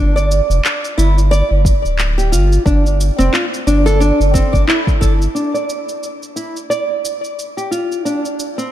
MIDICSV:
0, 0, Header, 1, 4, 480
1, 0, Start_track
1, 0, Tempo, 674157
1, 1895, Time_signature, 4, 2, 24, 8
1, 6207, End_track
2, 0, Start_track
2, 0, Title_t, "Nylon-string guitar"
2, 0, Program_c, 0, 24
2, 0, Note_on_c, 0, 62, 86
2, 98, Note_off_c, 0, 62, 0
2, 113, Note_on_c, 0, 74, 78
2, 579, Note_off_c, 0, 74, 0
2, 695, Note_on_c, 0, 64, 81
2, 825, Note_off_c, 0, 64, 0
2, 934, Note_on_c, 0, 74, 105
2, 1065, Note_off_c, 0, 74, 0
2, 1551, Note_on_c, 0, 67, 78
2, 1644, Note_off_c, 0, 67, 0
2, 1653, Note_on_c, 0, 65, 75
2, 1883, Note_off_c, 0, 65, 0
2, 1891, Note_on_c, 0, 62, 88
2, 2023, Note_off_c, 0, 62, 0
2, 2267, Note_on_c, 0, 60, 99
2, 2362, Note_off_c, 0, 60, 0
2, 2371, Note_on_c, 0, 65, 81
2, 2451, Note_off_c, 0, 65, 0
2, 2613, Note_on_c, 0, 62, 96
2, 2737, Note_off_c, 0, 62, 0
2, 2747, Note_on_c, 0, 69, 108
2, 2842, Note_off_c, 0, 69, 0
2, 2850, Note_on_c, 0, 62, 88
2, 2983, Note_off_c, 0, 62, 0
2, 3088, Note_on_c, 0, 60, 101
2, 3222, Note_off_c, 0, 60, 0
2, 3224, Note_on_c, 0, 74, 78
2, 3325, Note_off_c, 0, 74, 0
2, 3328, Note_on_c, 0, 64, 82
2, 3410, Note_off_c, 0, 64, 0
2, 3567, Note_on_c, 0, 69, 101
2, 3649, Note_off_c, 0, 69, 0
2, 3807, Note_on_c, 0, 62, 71
2, 3935, Note_off_c, 0, 62, 0
2, 3947, Note_on_c, 0, 74, 65
2, 4416, Note_off_c, 0, 74, 0
2, 4528, Note_on_c, 0, 64, 64
2, 4662, Note_off_c, 0, 64, 0
2, 4770, Note_on_c, 0, 74, 94
2, 4903, Note_off_c, 0, 74, 0
2, 5391, Note_on_c, 0, 67, 65
2, 5484, Note_off_c, 0, 67, 0
2, 5491, Note_on_c, 0, 65, 67
2, 5723, Note_off_c, 0, 65, 0
2, 5733, Note_on_c, 0, 62, 75
2, 5865, Note_off_c, 0, 62, 0
2, 6108, Note_on_c, 0, 60, 91
2, 6203, Note_off_c, 0, 60, 0
2, 6207, End_track
3, 0, Start_track
3, 0, Title_t, "Analog synth bass"
3, 0, Program_c, 1, 38
3, 0, Note_on_c, 1, 31, 90
3, 290, Note_off_c, 1, 31, 0
3, 356, Note_on_c, 1, 29, 93
3, 428, Note_off_c, 1, 29, 0
3, 700, Note_on_c, 1, 31, 100
3, 1013, Note_off_c, 1, 31, 0
3, 1077, Note_on_c, 1, 31, 81
3, 1236, Note_off_c, 1, 31, 0
3, 1317, Note_on_c, 1, 26, 101
3, 1659, Note_on_c, 1, 31, 94
3, 1669, Note_off_c, 1, 26, 0
3, 1838, Note_off_c, 1, 31, 0
3, 1895, Note_on_c, 1, 31, 96
3, 2210, Note_off_c, 1, 31, 0
3, 2273, Note_on_c, 1, 29, 83
3, 2346, Note_off_c, 1, 29, 0
3, 2615, Note_on_c, 1, 31, 98
3, 2930, Note_off_c, 1, 31, 0
3, 2993, Note_on_c, 1, 31, 81
3, 3155, Note_off_c, 1, 31, 0
3, 3230, Note_on_c, 1, 31, 84
3, 3305, Note_off_c, 1, 31, 0
3, 3572, Note_on_c, 1, 31, 93
3, 3755, Note_off_c, 1, 31, 0
3, 6207, End_track
4, 0, Start_track
4, 0, Title_t, "Drums"
4, 122, Note_on_c, 9, 69, 29
4, 194, Note_off_c, 9, 69, 0
4, 224, Note_on_c, 9, 69, 78
4, 295, Note_off_c, 9, 69, 0
4, 361, Note_on_c, 9, 69, 32
4, 432, Note_off_c, 9, 69, 0
4, 460, Note_on_c, 9, 39, 94
4, 465, Note_on_c, 9, 69, 43
4, 531, Note_off_c, 9, 39, 0
4, 537, Note_off_c, 9, 69, 0
4, 601, Note_on_c, 9, 69, 31
4, 673, Note_off_c, 9, 69, 0
4, 706, Note_on_c, 9, 69, 77
4, 777, Note_off_c, 9, 69, 0
4, 841, Note_on_c, 9, 69, 32
4, 913, Note_off_c, 9, 69, 0
4, 946, Note_on_c, 9, 69, 42
4, 1017, Note_off_c, 9, 69, 0
4, 1174, Note_on_c, 9, 36, 100
4, 1182, Note_on_c, 9, 69, 77
4, 1246, Note_off_c, 9, 36, 0
4, 1253, Note_off_c, 9, 69, 0
4, 1321, Note_on_c, 9, 69, 33
4, 1392, Note_off_c, 9, 69, 0
4, 1414, Note_on_c, 9, 39, 101
4, 1419, Note_on_c, 9, 69, 45
4, 1485, Note_off_c, 9, 39, 0
4, 1491, Note_off_c, 9, 69, 0
4, 1559, Note_on_c, 9, 69, 29
4, 1630, Note_off_c, 9, 69, 0
4, 1659, Note_on_c, 9, 69, 76
4, 1731, Note_off_c, 9, 69, 0
4, 1797, Note_on_c, 9, 69, 32
4, 1868, Note_off_c, 9, 69, 0
4, 1894, Note_on_c, 9, 36, 115
4, 1900, Note_on_c, 9, 69, 43
4, 1965, Note_off_c, 9, 36, 0
4, 1971, Note_off_c, 9, 69, 0
4, 2038, Note_on_c, 9, 69, 30
4, 2110, Note_off_c, 9, 69, 0
4, 2140, Note_on_c, 9, 69, 76
4, 2212, Note_off_c, 9, 69, 0
4, 2279, Note_on_c, 9, 69, 33
4, 2350, Note_off_c, 9, 69, 0
4, 2377, Note_on_c, 9, 39, 101
4, 2382, Note_on_c, 9, 69, 44
4, 2448, Note_off_c, 9, 39, 0
4, 2453, Note_off_c, 9, 69, 0
4, 2520, Note_on_c, 9, 69, 31
4, 2591, Note_off_c, 9, 69, 0
4, 2618, Note_on_c, 9, 69, 77
4, 2689, Note_off_c, 9, 69, 0
4, 2756, Note_on_c, 9, 69, 35
4, 2827, Note_off_c, 9, 69, 0
4, 2857, Note_on_c, 9, 69, 41
4, 2928, Note_off_c, 9, 69, 0
4, 2998, Note_on_c, 9, 69, 29
4, 3070, Note_off_c, 9, 69, 0
4, 3093, Note_on_c, 9, 36, 99
4, 3099, Note_on_c, 9, 69, 79
4, 3164, Note_off_c, 9, 36, 0
4, 3170, Note_off_c, 9, 69, 0
4, 3230, Note_on_c, 9, 36, 62
4, 3238, Note_on_c, 9, 69, 34
4, 3301, Note_off_c, 9, 36, 0
4, 3310, Note_off_c, 9, 69, 0
4, 3336, Note_on_c, 9, 39, 111
4, 3342, Note_on_c, 9, 69, 46
4, 3408, Note_off_c, 9, 39, 0
4, 3413, Note_off_c, 9, 69, 0
4, 3470, Note_on_c, 9, 36, 103
4, 3476, Note_on_c, 9, 69, 30
4, 3541, Note_off_c, 9, 36, 0
4, 3547, Note_off_c, 9, 69, 0
4, 3572, Note_on_c, 9, 36, 62
4, 3577, Note_on_c, 9, 69, 75
4, 3643, Note_off_c, 9, 36, 0
4, 3648, Note_off_c, 9, 69, 0
4, 3715, Note_on_c, 9, 69, 31
4, 3786, Note_off_c, 9, 69, 0
4, 3817, Note_on_c, 9, 69, 39
4, 3888, Note_off_c, 9, 69, 0
4, 3953, Note_on_c, 9, 69, 28
4, 4024, Note_off_c, 9, 69, 0
4, 4055, Note_on_c, 9, 69, 66
4, 4127, Note_off_c, 9, 69, 0
4, 4192, Note_on_c, 9, 69, 30
4, 4263, Note_off_c, 9, 69, 0
4, 4295, Note_on_c, 9, 69, 37
4, 4366, Note_off_c, 9, 69, 0
4, 4433, Note_on_c, 9, 69, 29
4, 4505, Note_off_c, 9, 69, 0
4, 4534, Note_on_c, 9, 69, 65
4, 4605, Note_off_c, 9, 69, 0
4, 4674, Note_on_c, 9, 69, 30
4, 4745, Note_off_c, 9, 69, 0
4, 4779, Note_on_c, 9, 69, 38
4, 4850, Note_off_c, 9, 69, 0
4, 5020, Note_on_c, 9, 69, 71
4, 5091, Note_off_c, 9, 69, 0
4, 5157, Note_on_c, 9, 69, 28
4, 5228, Note_off_c, 9, 69, 0
4, 5262, Note_on_c, 9, 69, 41
4, 5333, Note_off_c, 9, 69, 0
4, 5397, Note_on_c, 9, 69, 26
4, 5468, Note_off_c, 9, 69, 0
4, 5499, Note_on_c, 9, 69, 63
4, 5570, Note_off_c, 9, 69, 0
4, 5638, Note_on_c, 9, 69, 27
4, 5709, Note_off_c, 9, 69, 0
4, 5739, Note_on_c, 9, 69, 40
4, 5810, Note_off_c, 9, 69, 0
4, 5876, Note_on_c, 9, 69, 28
4, 5947, Note_off_c, 9, 69, 0
4, 5978, Note_on_c, 9, 69, 73
4, 6049, Note_off_c, 9, 69, 0
4, 6115, Note_on_c, 9, 69, 30
4, 6186, Note_off_c, 9, 69, 0
4, 6207, End_track
0, 0, End_of_file